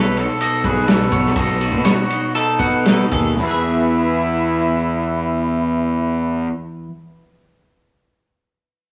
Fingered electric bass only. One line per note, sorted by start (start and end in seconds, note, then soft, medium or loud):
0.00 0.25 B1 medium
0.64 1.04 B1 medium
1.12 1.32 B1 medium
1.35 1.73 B1 medium
1.72 1.92 B2 medium
2.59 3.03 B2 medium
3.12 3.34 D#2 medium
3.38 6.47 E2 medium